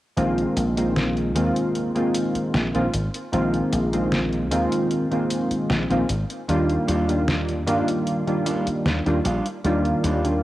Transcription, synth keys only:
0.17 0.72 D#3 medium
0.17 0.72 G#3 medium
0.17 0.72 A#3 medium
0.17 0.73 C4 medium
0.17 0.73 F4 loud
0.77 1.31 D#3 medium
0.77 1.31 G#3 medium
0.77 1.31 A#3 medium
0.77 1.31 C4 medium
0.77 1.32 F4 medium
1.35 1.90 D#3 medium
1.35 1.91 G#3 medium
1.35 1.91 A#3 medium
1.35 1.91 C4 medium
1.35 1.91 F4 loud
1.95 2.69 D#3 medium
1.95 2.69 G#3 medium
1.95 2.70 A#3 medium
1.95 2.70 C4 medium
1.95 2.70 F4 medium
2.74 2.86 D#3 medium
2.74 2.86 G#3 medium
2.74 2.86 A#3 medium
2.74 2.87 C4 medium
2.74 2.87 F4 loud
3.32 3.88 D#3 medium
3.32 3.88 G#3 medium
3.32 3.88 A#3 medium
3.32 3.88 C4 medium
3.32 3.88 F4 loud
3.92 4.47 D#3 medium
3.92 4.47 G#3 medium
3.92 4.47 A#3 medium
3.92 4.47 C4 medium
3.92 4.47 F4 medium
4.51 5.06 D#3 medium
4.51 5.06 G#3 medium
4.51 5.07 A#3 medium
4.51 5.07 C4 medium
4.51 5.07 F4 loud
5.11 5.85 D#3 medium
5.11 5.85 G#3 medium
5.11 5.86 A#3 medium
5.11 5.86 C4 medium
5.11 5.86 F4 medium
5.90 6.02 D#3 medium
5.90 6.02 G#3 medium
5.90 6.02 A#3 medium
5.90 6.02 C4 medium
5.90 6.03 F4 loud
6.48 7.04 D#3 medium
6.48 7.04 G3 medium
6.48 7.04 A#3 medium
6.48 7.04 D4 medium
6.48 7.04 F4 loud
7.08 7.62 D#3 medium
7.08 7.63 G3 medium
7.08 7.63 A#3 medium
7.08 7.63 D4 medium
7.08 7.63 F4 medium
7.67 8.22 D#3 medium
7.67 8.22 G3 medium
7.67 8.22 A#3 medium
7.67 8.23 D4 medium
7.67 8.23 F4 loud
8.27 9.01 D#3 medium
8.27 9.01 G3 medium
8.27 9.01 A#3 medium
8.27 9.02 D4 medium
8.27 9.02 F4 medium
9.06 9.18 D#3 medium
9.06 9.18 G3 medium
9.06 9.18 A#3 medium
9.06 9.18 D4 medium
9.06 9.19 F4 loud
9.64 10.20 D#3 loud
9.64 10.20 G3 medium
9.64 10.20 A#3 medium
9.64 10.20 D4 medium
9.64 10.20 F4 loud
10.25 10.43 D#3 medium
10.25 10.43 G3 medium
10.25 10.43 A#3 medium
10.25 10.43 D4 medium
10.25 10.43 F4 medium

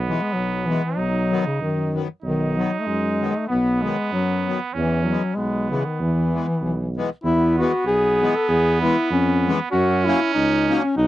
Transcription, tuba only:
0.00 0.14 B1 loud
0.35 0.76 B1 medium
0.97 1.39 B1 medium
1.60 2.02 F#2 medium
2.23 2.64 B1 medium
2.86 3.27 F#2 medium
3.50 3.90 B1 loud
4.12 4.52 F#2 medium
4.75 5.15 E2 loud
5.37 5.77 B1 medium
6.00 6.40 E2 medium
6.61 7.02 B1 medium
7.24 7.65 E2 loud
7.85 8.27 B1 medium
8.48 8.89 E2 loud
9.10 9.51 F2 loud
9.73 10.14 F#2 loud
10.36 10.76 C#2 loud
10.97 11.07 B1 loud

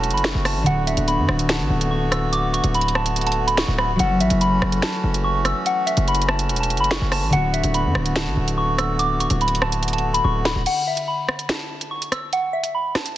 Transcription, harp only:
0.00 0.71 F#3 medium
0.00 0.62 E4 medium
0.00 0.64 A4 medium
0.63 4.04 D3 medium
0.63 3.95 B3 medium
0.70 3.97 F#4 medium
3.96 7.38 F#3 medium
3.96 7.29 E4 medium
4.03 7.30 A4 medium
7.29 10.71 D3 medium
7.29 10.62 B3 medium
7.36 10.64 F#4 medium

